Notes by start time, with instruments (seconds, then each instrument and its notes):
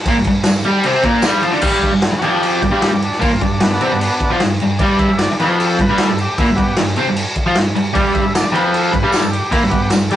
0.06 overdriven electric guitar A#2 A#3, kick, crash
0.17 overdriven electric guitar G2
0.24 overdriven electric guitar G2, kick, crash
0.44 overdriven electric guitar G2, snare, tambourine, crash
0.54 snare
0.64 overdriven electric guitar G3 G4, crash
0.83 overdriven electric guitar C3 C4, crash
1.03 overdriven electric guitar A#2 A#3, kick, crash
1.22 overdriven electric guitar G2 G3, snare, tambourine, crash
1.42 overdriven electric guitar F3 F4, crash
1.52 overdriven electric guitar D3 D4, snare
1.60 overdriven electric guitar G2 G3, kick, crash
1.82 kick, crash
1.92 overdriven electric guitar G2
2.02 snare, crash
2.12 muted overdriven electric guitar stroke, snare
2.19 overdriven electric guitar F2 F3, transistor combo organ F#4 G4, crash
2.43 crash
2.62 overdriven electric guitar G2, kick, crash
2.71 overdriven electric guitar G2 G3
2.82 transistor combo organ G4, snare, crash
2.92 overdriven electric guitar G2
3.02 transistor combo organ D4, crash
3.12 snare
3.20 overdriven electric guitar A#2 A#3, kick, crash
3.25 transistor combo organ F4
3.29 overdriven electric guitar G2
3.41 overdriven electric guitar G2, transistor combo organ D4, kick, crash
3.60 overdriven electric guitar G2, transistor combo organ B3 D4, snare, crash
3.71 snare
3.81 overdriven electric guitar C3 C4, crash
3.92 overdriven electric guitar G2
4.01 crash
4.20 kick, crash
4.30 overdriven electric guitar F3 F4
4.40 overdriven electric guitar G2, snare, crash
4.60 overdriven electric guitar G2, crash
4.79 overdriven electric guitar G2 G3, transistor combo organ D5, kick, crash
4.99 transistor combo organ E5, kick, crash
5.10 overdriven electric guitar G2
5.17 transistor combo organ D5, snare, crash
5.29 muted overdriven electric guitar stroke, snare
5.39 overdriven electric guitar F2 F3, transistor combo organ B4, crash
5.59 transistor combo organ A4, crash
5.79 overdriven electric guitar G2, transistor combo organ B4, kick, crash
5.89 overdriven electric guitar G2 G3
5.98 transistor combo organ A4, snare, crash
6.10 overdriven electric guitar G2
6.18 transistor combo organ G4, crash
6.38 overdriven electric guitar A#2 A#3, transistor combo organ E4, kick, crash
6.49 overdriven electric guitar G2
6.56 overdriven electric guitar G2, transistor combo organ B3 G4, kick, crash
6.77 overdriven electric guitar G2, snare, crash
6.87 snare
6.96 overdriven electric guitar C3 C4, crash
7.07 overdriven electric guitar G2
7.16 crash
7.35 kick, crash
7.46 overdriven electric guitar F3 F4
7.55 overdriven electric guitar G2, snare, crash
7.76 overdriven electric guitar G2, crash
7.93 overdriven electric guitar G2 G3, transistor combo organ D5, kick, crash
8.13 transistor combo organ E5, kick, crash
8.23 overdriven electric guitar G2
8.35 transistor combo organ D5, snare, tambourine, crash
8.44 muted overdriven electric guitar stroke, snare
8.52 overdriven electric guitar F2 F3, transistor combo organ B4, crash
8.73 transistor combo organ A4, crash
8.91 overdriven electric guitar G2, transistor combo organ B4, kick, crash
9.03 overdriven electric guitar G2 G3
9.11 transistor combo organ A4, snare, tambourine, crash
9.23 overdriven electric guitar G2
9.32 transistor combo organ G4, crash
9.51 overdriven electric guitar A#2 A#3, transistor combo organ E4, kick, crash
9.63 overdriven electric guitar G2
9.70 overdriven electric guitar G2, transistor combo organ B3 G4, kick, crash
9.90 overdriven electric guitar G2, snare, tambourine, crash
10.10 overdriven electric guitar G3 G4, transistor combo organ A4, crash